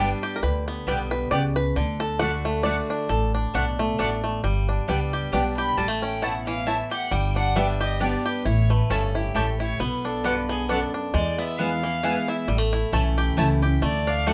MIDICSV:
0, 0, Header, 1, 6, 480
1, 0, Start_track
1, 0, Tempo, 446429
1, 464, Time_signature, 3, 2, 24, 8
1, 15412, End_track
2, 0, Start_track
2, 0, Title_t, "Fiddle"
2, 0, Program_c, 0, 110
2, 5730, Note_on_c, 0, 79, 85
2, 5976, Note_off_c, 0, 79, 0
2, 5990, Note_on_c, 0, 83, 109
2, 6209, Note_on_c, 0, 81, 96
2, 6225, Note_off_c, 0, 83, 0
2, 6465, Note_off_c, 0, 81, 0
2, 6471, Note_on_c, 0, 79, 105
2, 6690, Note_on_c, 0, 78, 90
2, 6706, Note_off_c, 0, 79, 0
2, 6948, Note_off_c, 0, 78, 0
2, 6955, Note_on_c, 0, 77, 100
2, 7179, Note_on_c, 0, 76, 93
2, 7195, Note_off_c, 0, 77, 0
2, 7428, Note_off_c, 0, 76, 0
2, 7434, Note_on_c, 0, 78, 100
2, 7650, Note_on_c, 0, 79, 106
2, 7666, Note_off_c, 0, 78, 0
2, 7908, Note_off_c, 0, 79, 0
2, 7915, Note_on_c, 0, 78, 107
2, 8134, Note_on_c, 0, 76, 96
2, 8150, Note_off_c, 0, 78, 0
2, 8397, Note_off_c, 0, 76, 0
2, 8403, Note_on_c, 0, 75, 90
2, 8614, Note_on_c, 0, 74, 80
2, 8630, Note_off_c, 0, 75, 0
2, 8878, Note_off_c, 0, 74, 0
2, 8883, Note_on_c, 0, 71, 77
2, 9093, Note_on_c, 0, 73, 88
2, 9109, Note_off_c, 0, 71, 0
2, 9357, Note_on_c, 0, 71, 86
2, 9373, Note_off_c, 0, 73, 0
2, 9580, Note_on_c, 0, 69, 82
2, 9596, Note_off_c, 0, 71, 0
2, 9842, Note_off_c, 0, 69, 0
2, 9849, Note_on_c, 0, 67, 78
2, 10060, Note_on_c, 0, 69, 76
2, 10077, Note_off_c, 0, 67, 0
2, 10316, Note_off_c, 0, 69, 0
2, 10323, Note_on_c, 0, 73, 98
2, 10536, Note_on_c, 0, 71, 87
2, 10552, Note_off_c, 0, 73, 0
2, 10806, Note_on_c, 0, 69, 89
2, 10822, Note_off_c, 0, 71, 0
2, 11022, Note_on_c, 0, 71, 99
2, 11038, Note_off_c, 0, 69, 0
2, 11281, Note_off_c, 0, 71, 0
2, 11288, Note_on_c, 0, 68, 84
2, 11486, Note_off_c, 0, 68, 0
2, 11504, Note_on_c, 0, 69, 86
2, 11661, Note_off_c, 0, 69, 0
2, 11981, Note_on_c, 0, 74, 94
2, 12243, Note_on_c, 0, 76, 107
2, 12259, Note_off_c, 0, 74, 0
2, 12463, Note_on_c, 0, 77, 110
2, 12479, Note_off_c, 0, 76, 0
2, 13213, Note_on_c, 0, 76, 96
2, 13229, Note_off_c, 0, 77, 0
2, 13425, Note_off_c, 0, 76, 0
2, 14865, Note_on_c, 0, 74, 99
2, 15132, Note_on_c, 0, 77, 113
2, 15148, Note_off_c, 0, 74, 0
2, 15355, Note_on_c, 0, 78, 108
2, 15371, Note_off_c, 0, 77, 0
2, 15412, Note_off_c, 0, 78, 0
2, 15412, End_track
3, 0, Start_track
3, 0, Title_t, "Mandolin"
3, 0, Program_c, 1, 25
3, 934, Note_on_c, 1, 59, 93
3, 941, Note_on_c, 1, 67, 95
3, 946, Note_on_c, 1, 74, 88
3, 950, Note_on_c, 1, 79, 105
3, 1044, Note_off_c, 1, 59, 0
3, 1047, Note_off_c, 1, 67, 0
3, 1050, Note_off_c, 1, 74, 0
3, 1052, Note_off_c, 1, 79, 0
3, 1412, Note_on_c, 1, 59, 92
3, 1418, Note_on_c, 1, 67, 90
3, 1421, Note_on_c, 1, 74, 101
3, 1426, Note_on_c, 1, 79, 99
3, 1522, Note_off_c, 1, 59, 0
3, 1525, Note_off_c, 1, 67, 0
3, 1527, Note_off_c, 1, 74, 0
3, 1529, Note_off_c, 1, 79, 0
3, 2369, Note_on_c, 1, 57, 92
3, 2372, Note_on_c, 1, 66, 87
3, 2378, Note_on_c, 1, 74, 94
3, 2381, Note_on_c, 1, 78, 98
3, 2479, Note_off_c, 1, 57, 0
3, 2481, Note_off_c, 1, 66, 0
3, 2484, Note_off_c, 1, 74, 0
3, 2485, Note_off_c, 1, 78, 0
3, 2844, Note_on_c, 1, 57, 93
3, 2849, Note_on_c, 1, 66, 91
3, 2854, Note_on_c, 1, 74, 99
3, 2858, Note_on_c, 1, 78, 107
3, 2956, Note_off_c, 1, 57, 0
3, 2958, Note_off_c, 1, 66, 0
3, 2961, Note_off_c, 1, 74, 0
3, 2963, Note_off_c, 1, 78, 0
3, 3804, Note_on_c, 1, 57, 103
3, 3810, Note_on_c, 1, 66, 84
3, 3813, Note_on_c, 1, 74, 85
3, 3817, Note_on_c, 1, 78, 102
3, 3914, Note_off_c, 1, 57, 0
3, 3917, Note_off_c, 1, 66, 0
3, 3919, Note_off_c, 1, 74, 0
3, 3921, Note_off_c, 1, 78, 0
3, 4283, Note_on_c, 1, 57, 98
3, 4290, Note_on_c, 1, 66, 92
3, 4293, Note_on_c, 1, 74, 109
3, 4298, Note_on_c, 1, 78, 107
3, 4394, Note_off_c, 1, 57, 0
3, 4397, Note_off_c, 1, 66, 0
3, 4399, Note_off_c, 1, 74, 0
3, 4401, Note_off_c, 1, 78, 0
3, 5243, Note_on_c, 1, 59, 86
3, 5249, Note_on_c, 1, 67, 89
3, 5253, Note_on_c, 1, 74, 92
3, 5257, Note_on_c, 1, 79, 99
3, 5353, Note_off_c, 1, 59, 0
3, 5356, Note_off_c, 1, 67, 0
3, 5358, Note_off_c, 1, 74, 0
3, 5360, Note_off_c, 1, 79, 0
3, 5720, Note_on_c, 1, 59, 92
3, 5726, Note_on_c, 1, 67, 99
3, 5728, Note_on_c, 1, 74, 92
3, 5734, Note_on_c, 1, 79, 95
3, 5831, Note_off_c, 1, 59, 0
3, 5834, Note_off_c, 1, 67, 0
3, 5835, Note_off_c, 1, 74, 0
3, 5838, Note_off_c, 1, 79, 0
3, 6685, Note_on_c, 1, 57, 88
3, 6690, Note_on_c, 1, 64, 94
3, 6695, Note_on_c, 1, 73, 90
3, 6699, Note_on_c, 1, 81, 100
3, 6794, Note_off_c, 1, 57, 0
3, 6797, Note_off_c, 1, 64, 0
3, 6799, Note_off_c, 1, 73, 0
3, 6801, Note_off_c, 1, 81, 0
3, 7161, Note_on_c, 1, 57, 91
3, 7166, Note_on_c, 1, 64, 92
3, 7170, Note_on_c, 1, 73, 101
3, 7175, Note_on_c, 1, 81, 107
3, 7272, Note_off_c, 1, 57, 0
3, 7274, Note_off_c, 1, 64, 0
3, 7277, Note_off_c, 1, 73, 0
3, 7279, Note_off_c, 1, 81, 0
3, 8123, Note_on_c, 1, 59, 87
3, 8129, Note_on_c, 1, 67, 92
3, 8135, Note_on_c, 1, 74, 85
3, 8138, Note_on_c, 1, 79, 90
3, 8234, Note_off_c, 1, 59, 0
3, 8236, Note_off_c, 1, 67, 0
3, 8240, Note_off_c, 1, 74, 0
3, 8241, Note_off_c, 1, 79, 0
3, 8601, Note_on_c, 1, 59, 88
3, 8607, Note_on_c, 1, 67, 93
3, 8611, Note_on_c, 1, 74, 98
3, 8616, Note_on_c, 1, 79, 107
3, 8713, Note_off_c, 1, 59, 0
3, 8716, Note_off_c, 1, 67, 0
3, 8718, Note_off_c, 1, 74, 0
3, 8720, Note_off_c, 1, 79, 0
3, 9569, Note_on_c, 1, 57, 92
3, 9573, Note_on_c, 1, 64, 96
3, 9577, Note_on_c, 1, 73, 97
3, 9582, Note_on_c, 1, 81, 100
3, 9678, Note_off_c, 1, 57, 0
3, 9680, Note_off_c, 1, 64, 0
3, 9682, Note_off_c, 1, 73, 0
3, 9684, Note_off_c, 1, 81, 0
3, 10046, Note_on_c, 1, 57, 101
3, 10051, Note_on_c, 1, 64, 99
3, 10055, Note_on_c, 1, 73, 90
3, 10059, Note_on_c, 1, 81, 104
3, 10157, Note_off_c, 1, 57, 0
3, 10160, Note_off_c, 1, 64, 0
3, 10162, Note_off_c, 1, 73, 0
3, 10163, Note_off_c, 1, 81, 0
3, 11010, Note_on_c, 1, 59, 85
3, 11014, Note_on_c, 1, 66, 88
3, 11020, Note_on_c, 1, 74, 110
3, 11024, Note_on_c, 1, 78, 96
3, 11120, Note_off_c, 1, 59, 0
3, 11122, Note_off_c, 1, 66, 0
3, 11125, Note_off_c, 1, 74, 0
3, 11127, Note_off_c, 1, 78, 0
3, 11490, Note_on_c, 1, 59, 98
3, 11497, Note_on_c, 1, 66, 91
3, 11501, Note_on_c, 1, 74, 106
3, 11505, Note_on_c, 1, 78, 96
3, 11600, Note_off_c, 1, 59, 0
3, 11604, Note_off_c, 1, 66, 0
3, 11606, Note_off_c, 1, 74, 0
3, 11608, Note_off_c, 1, 78, 0
3, 12453, Note_on_c, 1, 59, 88
3, 12460, Note_on_c, 1, 64, 88
3, 12463, Note_on_c, 1, 71, 108
3, 12467, Note_on_c, 1, 80, 107
3, 12563, Note_off_c, 1, 59, 0
3, 12567, Note_off_c, 1, 64, 0
3, 12568, Note_off_c, 1, 71, 0
3, 12570, Note_off_c, 1, 80, 0
3, 12937, Note_on_c, 1, 59, 89
3, 12942, Note_on_c, 1, 64, 97
3, 12947, Note_on_c, 1, 71, 104
3, 12952, Note_on_c, 1, 80, 110
3, 13045, Note_off_c, 1, 59, 0
3, 13048, Note_off_c, 1, 64, 0
3, 13051, Note_off_c, 1, 71, 0
3, 13053, Note_off_c, 1, 80, 0
3, 13894, Note_on_c, 1, 57, 89
3, 13898, Note_on_c, 1, 64, 88
3, 13903, Note_on_c, 1, 73, 89
3, 13907, Note_on_c, 1, 81, 117
3, 14005, Note_off_c, 1, 57, 0
3, 14007, Note_off_c, 1, 64, 0
3, 14009, Note_off_c, 1, 73, 0
3, 14011, Note_off_c, 1, 81, 0
3, 14373, Note_on_c, 1, 57, 103
3, 14379, Note_on_c, 1, 64, 103
3, 14384, Note_on_c, 1, 73, 94
3, 14388, Note_on_c, 1, 81, 107
3, 14485, Note_off_c, 1, 57, 0
3, 14487, Note_off_c, 1, 64, 0
3, 14490, Note_off_c, 1, 73, 0
3, 14492, Note_off_c, 1, 81, 0
3, 15338, Note_on_c, 1, 57, 89
3, 15343, Note_on_c, 1, 66, 105
3, 15347, Note_on_c, 1, 74, 105
3, 15352, Note_on_c, 1, 78, 108
3, 15412, Note_off_c, 1, 57, 0
3, 15412, Note_off_c, 1, 66, 0
3, 15412, Note_off_c, 1, 74, 0
3, 15412, Note_off_c, 1, 78, 0
3, 15412, End_track
4, 0, Start_track
4, 0, Title_t, "Five-string banjo"
4, 0, Program_c, 2, 105
4, 0, Note_on_c, 2, 55, 51
4, 0, Note_on_c, 2, 62, 61
4, 248, Note_on_c, 2, 67, 56
4, 385, Note_on_c, 2, 70, 63
4, 457, Note_off_c, 2, 70, 0
4, 461, Note_on_c, 2, 71, 77
4, 674, Note_off_c, 2, 55, 0
4, 725, Note_off_c, 2, 71, 0
4, 729, Note_on_c, 2, 59, 61
4, 899, Note_off_c, 2, 67, 0
4, 944, Note_on_c, 2, 55, 59
4, 1191, Note_off_c, 2, 62, 0
4, 1196, Note_on_c, 2, 71, 83
4, 1378, Note_off_c, 2, 59, 0
4, 1405, Note_off_c, 2, 71, 0
4, 1409, Note_on_c, 2, 74, 95
4, 1632, Note_off_c, 2, 55, 0
4, 1673, Note_off_c, 2, 74, 0
4, 1677, Note_on_c, 2, 71, 82
4, 1880, Note_off_c, 2, 71, 0
4, 1896, Note_on_c, 2, 50, 69
4, 2151, Note_on_c, 2, 69, 82
4, 2359, Note_on_c, 2, 78, 121
4, 2378, Note_off_c, 2, 69, 0
4, 2635, Note_on_c, 2, 57, 68
4, 2827, Note_off_c, 2, 78, 0
4, 2831, Note_on_c, 2, 74, 88
4, 3115, Note_off_c, 2, 74, 0
4, 3119, Note_on_c, 2, 62, 64
4, 3288, Note_off_c, 2, 57, 0
4, 3326, Note_on_c, 2, 69, 80
4, 3401, Note_off_c, 2, 50, 0
4, 3584, Note_off_c, 2, 62, 0
4, 3593, Note_off_c, 2, 69, 0
4, 3597, Note_on_c, 2, 62, 61
4, 3803, Note_off_c, 2, 62, 0
4, 3816, Note_on_c, 2, 62, 66
4, 4078, Note_on_c, 2, 57, 76
4, 4278, Note_off_c, 2, 62, 0
4, 4291, Note_on_c, 2, 62, 62
4, 4542, Note_off_c, 2, 57, 0
4, 4555, Note_on_c, 2, 57, 59
4, 4767, Note_off_c, 2, 57, 0
4, 4770, Note_off_c, 2, 62, 0
4, 4772, Note_on_c, 2, 55, 69
4, 5039, Note_on_c, 2, 62, 56
4, 5241, Note_off_c, 2, 55, 0
4, 5254, Note_on_c, 2, 55, 61
4, 5518, Note_on_c, 2, 67, 57
4, 5689, Note_off_c, 2, 62, 0
4, 5736, Note_on_c, 2, 62, 62
4, 5943, Note_off_c, 2, 55, 0
4, 5989, Note_off_c, 2, 67, 0
4, 6002, Note_on_c, 2, 67, 59
4, 6213, Note_off_c, 2, 62, 0
4, 6213, Note_off_c, 2, 67, 0
4, 6213, Note_on_c, 2, 55, 66
4, 6322, Note_off_c, 2, 55, 0
4, 6322, Note_on_c, 2, 57, 68
4, 6477, Note_on_c, 2, 61, 61
4, 6692, Note_on_c, 2, 64, 65
4, 6693, Note_off_c, 2, 57, 0
4, 6958, Note_on_c, 2, 52, 66
4, 7128, Note_off_c, 2, 61, 0
4, 7157, Note_off_c, 2, 64, 0
4, 7170, Note_on_c, 2, 64, 57
4, 7434, Note_on_c, 2, 67, 64
4, 7609, Note_off_c, 2, 52, 0
4, 7650, Note_off_c, 2, 64, 0
4, 7650, Note_off_c, 2, 67, 0
4, 7650, Note_on_c, 2, 55, 74
4, 7915, Note_on_c, 2, 62, 64
4, 8117, Note_off_c, 2, 55, 0
4, 8130, Note_on_c, 2, 55, 68
4, 8394, Note_on_c, 2, 67, 63
4, 8569, Note_off_c, 2, 62, 0
4, 8609, Note_on_c, 2, 62, 58
4, 8823, Note_off_c, 2, 55, 0
4, 8863, Note_off_c, 2, 67, 0
4, 8876, Note_on_c, 2, 67, 62
4, 9085, Note_off_c, 2, 62, 0
4, 9090, Note_on_c, 2, 64, 61
4, 9092, Note_off_c, 2, 67, 0
4, 9355, Note_on_c, 2, 57, 62
4, 9574, Note_on_c, 2, 61, 61
4, 9784, Note_off_c, 2, 64, 0
4, 9839, Note_on_c, 2, 64, 59
4, 10010, Note_off_c, 2, 57, 0
4, 10059, Note_on_c, 2, 67, 52
4, 10267, Note_off_c, 2, 61, 0
4, 10309, Note_off_c, 2, 64, 0
4, 10322, Note_on_c, 2, 64, 61
4, 10537, Note_off_c, 2, 64, 0
4, 10537, Note_on_c, 2, 59, 78
4, 10538, Note_off_c, 2, 67, 0
4, 10805, Note_on_c, 2, 62, 65
4, 11015, Note_on_c, 2, 50, 60
4, 11278, Note_off_c, 2, 59, 0
4, 11282, Note_on_c, 2, 59, 73
4, 11457, Note_off_c, 2, 62, 0
4, 11497, Note_on_c, 2, 62, 55
4, 11709, Note_off_c, 2, 50, 0
4, 11752, Note_off_c, 2, 62, 0
4, 11765, Note_on_c, 2, 62, 59
4, 11936, Note_off_c, 2, 59, 0
4, 11975, Note_on_c, 2, 56, 75
4, 11980, Note_off_c, 2, 62, 0
4, 12240, Note_on_c, 2, 59, 62
4, 12670, Note_off_c, 2, 56, 0
4, 12724, Note_on_c, 2, 52, 63
4, 12896, Note_off_c, 2, 59, 0
4, 12939, Note_on_c, 2, 64, 58
4, 13194, Note_off_c, 2, 64, 0
4, 13207, Note_on_c, 2, 64, 58
4, 13378, Note_off_c, 2, 52, 0
4, 13421, Note_on_c, 2, 55, 68
4, 13422, Note_off_c, 2, 64, 0
4, 13527, Note_off_c, 2, 55, 0
4, 13527, Note_on_c, 2, 57, 74
4, 13685, Note_on_c, 2, 64, 62
4, 13891, Note_off_c, 2, 57, 0
4, 13904, Note_on_c, 2, 57, 64
4, 14169, Note_on_c, 2, 67, 62
4, 14339, Note_off_c, 2, 64, 0
4, 14385, Note_on_c, 2, 64, 58
4, 14596, Note_off_c, 2, 57, 0
4, 14637, Note_off_c, 2, 67, 0
4, 14650, Note_on_c, 2, 67, 60
4, 14862, Note_on_c, 2, 57, 77
4, 14865, Note_off_c, 2, 64, 0
4, 14865, Note_off_c, 2, 67, 0
4, 15131, Note_on_c, 2, 62, 62
4, 15329, Note_off_c, 2, 57, 0
4, 15342, Note_on_c, 2, 57, 66
4, 15412, Note_off_c, 2, 57, 0
4, 15412, Note_off_c, 2, 62, 0
4, 15412, End_track
5, 0, Start_track
5, 0, Title_t, "Steel-string acoustic guitar"
5, 0, Program_c, 3, 25
5, 0, Note_on_c, 3, 55, 96
5, 0, Note_on_c, 3, 59, 98
5, 0, Note_on_c, 3, 62, 99
5, 0, Note_on_c, 3, 67, 99
5, 436, Note_off_c, 3, 55, 0
5, 440, Note_off_c, 3, 59, 0
5, 444, Note_off_c, 3, 62, 0
5, 447, Note_off_c, 3, 67, 0
5, 461, Note_on_c, 3, 50, 85
5, 939, Note_on_c, 3, 47, 93
5, 1376, Note_off_c, 3, 50, 0
5, 1397, Note_off_c, 3, 47, 0
5, 1416, Note_on_c, 3, 49, 94
5, 1875, Note_off_c, 3, 49, 0
5, 1895, Note_on_c, 3, 50, 95
5, 2354, Note_off_c, 3, 50, 0
5, 2367, Note_on_c, 3, 50, 96
5, 2374, Note_on_c, 3, 57, 87
5, 2379, Note_on_c, 3, 62, 97
5, 2386, Note_on_c, 3, 66, 101
5, 2829, Note_off_c, 3, 50, 0
5, 2833, Note_off_c, 3, 57, 0
5, 2835, Note_off_c, 3, 62, 0
5, 2839, Note_off_c, 3, 66, 0
5, 2842, Note_on_c, 3, 50, 102
5, 2850, Note_on_c, 3, 57, 92
5, 2856, Note_on_c, 3, 62, 89
5, 2862, Note_on_c, 3, 66, 107
5, 3306, Note_off_c, 3, 50, 0
5, 3310, Note_off_c, 3, 57, 0
5, 3313, Note_off_c, 3, 62, 0
5, 3316, Note_off_c, 3, 66, 0
5, 3324, Note_on_c, 3, 45, 99
5, 3809, Note_on_c, 3, 47, 95
5, 4244, Note_off_c, 3, 45, 0
5, 4268, Note_off_c, 3, 47, 0
5, 4291, Note_on_c, 3, 45, 86
5, 4749, Note_off_c, 3, 45, 0
5, 4776, Note_on_c, 3, 43, 84
5, 5254, Note_on_c, 3, 55, 76
5, 5261, Note_on_c, 3, 59, 93
5, 5265, Note_on_c, 3, 62, 92
5, 5274, Note_on_c, 3, 67, 94
5, 5690, Note_off_c, 3, 43, 0
5, 5710, Note_off_c, 3, 55, 0
5, 5714, Note_off_c, 3, 59, 0
5, 5716, Note_off_c, 3, 62, 0
5, 5720, Note_off_c, 3, 67, 0
5, 5734, Note_on_c, 3, 55, 81
5, 5741, Note_on_c, 3, 59, 104
5, 5747, Note_on_c, 3, 62, 100
5, 5753, Note_on_c, 3, 67, 100
5, 6190, Note_off_c, 3, 55, 0
5, 6194, Note_off_c, 3, 59, 0
5, 6197, Note_off_c, 3, 62, 0
5, 6200, Note_off_c, 3, 67, 0
5, 6213, Note_on_c, 3, 45, 89
5, 6695, Note_on_c, 3, 47, 88
5, 7129, Note_off_c, 3, 45, 0
5, 7151, Note_off_c, 3, 47, 0
5, 7176, Note_on_c, 3, 45, 90
5, 7632, Note_off_c, 3, 45, 0
5, 7655, Note_on_c, 3, 43, 95
5, 8131, Note_on_c, 3, 55, 83
5, 8138, Note_on_c, 3, 59, 86
5, 8144, Note_on_c, 3, 62, 86
5, 8150, Note_on_c, 3, 67, 105
5, 8571, Note_off_c, 3, 43, 0
5, 8590, Note_off_c, 3, 55, 0
5, 8594, Note_off_c, 3, 59, 0
5, 8597, Note_off_c, 3, 62, 0
5, 8600, Note_off_c, 3, 67, 0
5, 8610, Note_on_c, 3, 55, 87
5, 8617, Note_on_c, 3, 59, 97
5, 8624, Note_on_c, 3, 62, 90
5, 8629, Note_on_c, 3, 67, 96
5, 9070, Note_off_c, 3, 55, 0
5, 9074, Note_off_c, 3, 59, 0
5, 9077, Note_off_c, 3, 62, 0
5, 9080, Note_off_c, 3, 67, 0
5, 9095, Note_on_c, 3, 45, 78
5, 9578, Note_on_c, 3, 43, 91
5, 10013, Note_off_c, 3, 45, 0
5, 10035, Note_off_c, 3, 43, 0
5, 10055, Note_on_c, 3, 45, 95
5, 10514, Note_off_c, 3, 45, 0
5, 10540, Note_on_c, 3, 47, 96
5, 11021, Note_on_c, 3, 43, 88
5, 11457, Note_off_c, 3, 47, 0
5, 11479, Note_off_c, 3, 43, 0
5, 11501, Note_on_c, 3, 42, 95
5, 11959, Note_off_c, 3, 42, 0
5, 11982, Note_on_c, 3, 40, 84
5, 12459, Note_on_c, 3, 52, 80
5, 12467, Note_on_c, 3, 56, 82
5, 12474, Note_on_c, 3, 59, 94
5, 12478, Note_on_c, 3, 64, 102
5, 12709, Note_off_c, 3, 64, 0
5, 12714, Note_off_c, 3, 52, 0
5, 12718, Note_off_c, 3, 56, 0
5, 12721, Note_off_c, 3, 59, 0
5, 12721, Note_on_c, 3, 64, 56
5, 12740, Note_on_c, 3, 59, 51
5, 12899, Note_off_c, 3, 40, 0
5, 12930, Note_off_c, 3, 64, 0
5, 12938, Note_on_c, 3, 52, 87
5, 12940, Note_off_c, 3, 59, 0
5, 12944, Note_on_c, 3, 56, 102
5, 12952, Note_on_c, 3, 59, 104
5, 12958, Note_on_c, 3, 64, 106
5, 13398, Note_off_c, 3, 52, 0
5, 13402, Note_off_c, 3, 56, 0
5, 13405, Note_off_c, 3, 59, 0
5, 13408, Note_off_c, 3, 64, 0
5, 13422, Note_on_c, 3, 45, 93
5, 13898, Note_on_c, 3, 52, 80
5, 13903, Note_on_c, 3, 57, 94
5, 13910, Note_on_c, 3, 61, 86
5, 13919, Note_on_c, 3, 64, 103
5, 14340, Note_off_c, 3, 45, 0
5, 14359, Note_off_c, 3, 52, 0
5, 14362, Note_off_c, 3, 57, 0
5, 14366, Note_off_c, 3, 61, 0
5, 14370, Note_off_c, 3, 64, 0
5, 14376, Note_on_c, 3, 52, 94
5, 14385, Note_on_c, 3, 57, 107
5, 14391, Note_on_c, 3, 61, 97
5, 14399, Note_on_c, 3, 64, 109
5, 14630, Note_off_c, 3, 64, 0
5, 14634, Note_off_c, 3, 52, 0
5, 14638, Note_off_c, 3, 57, 0
5, 14642, Note_off_c, 3, 61, 0
5, 14643, Note_on_c, 3, 64, 73
5, 14664, Note_on_c, 3, 61, 53
5, 14852, Note_off_c, 3, 64, 0
5, 14861, Note_on_c, 3, 50, 89
5, 14863, Note_off_c, 3, 61, 0
5, 15323, Note_off_c, 3, 50, 0
5, 15336, Note_on_c, 3, 50, 87
5, 15342, Note_on_c, 3, 57, 94
5, 15348, Note_on_c, 3, 62, 102
5, 15353, Note_on_c, 3, 66, 90
5, 15412, Note_off_c, 3, 50, 0
5, 15412, Note_off_c, 3, 57, 0
5, 15412, Note_off_c, 3, 62, 0
5, 15412, Note_off_c, 3, 66, 0
5, 15412, End_track
6, 0, Start_track
6, 0, Title_t, "Upright bass"
6, 0, Program_c, 4, 32
6, 0, Note_on_c, 4, 31, 97
6, 124, Note_off_c, 4, 31, 0
6, 458, Note_on_c, 4, 38, 83
6, 826, Note_off_c, 4, 38, 0
6, 932, Note_on_c, 4, 35, 78
6, 1343, Note_off_c, 4, 35, 0
6, 1412, Note_on_c, 4, 37, 82
6, 1822, Note_off_c, 4, 37, 0
6, 1891, Note_on_c, 4, 38, 92
6, 2991, Note_off_c, 4, 38, 0
6, 3327, Note_on_c, 4, 33, 96
6, 3696, Note_off_c, 4, 33, 0
6, 3808, Note_on_c, 4, 35, 88
6, 4217, Note_off_c, 4, 35, 0
6, 4289, Note_on_c, 4, 33, 91
6, 4697, Note_off_c, 4, 33, 0
6, 4768, Note_on_c, 4, 31, 97
6, 5136, Note_off_c, 4, 31, 0
6, 5248, Note_on_c, 4, 37, 73
6, 5657, Note_off_c, 4, 37, 0
6, 5725, Note_on_c, 4, 35, 90
6, 6135, Note_off_c, 4, 35, 0
6, 6207, Note_on_c, 4, 33, 95
6, 7310, Note_off_c, 4, 33, 0
6, 7648, Note_on_c, 4, 31, 99
6, 8751, Note_off_c, 4, 31, 0
6, 9090, Note_on_c, 4, 33, 94
6, 9458, Note_off_c, 4, 33, 0
6, 9569, Note_on_c, 4, 31, 88
6, 9980, Note_off_c, 4, 31, 0
6, 10051, Note_on_c, 4, 33, 91
6, 10461, Note_off_c, 4, 33, 0
6, 10535, Note_on_c, 4, 35, 93
6, 11639, Note_off_c, 4, 35, 0
6, 11976, Note_on_c, 4, 40, 106
6, 13080, Note_off_c, 4, 40, 0
6, 13415, Note_on_c, 4, 33, 97
6, 13785, Note_off_c, 4, 33, 0
6, 13900, Note_on_c, 4, 35, 92
6, 14310, Note_off_c, 4, 35, 0
6, 14378, Note_on_c, 4, 37, 88
6, 14789, Note_off_c, 4, 37, 0
6, 14856, Note_on_c, 4, 38, 104
6, 15412, Note_off_c, 4, 38, 0
6, 15412, End_track
0, 0, End_of_file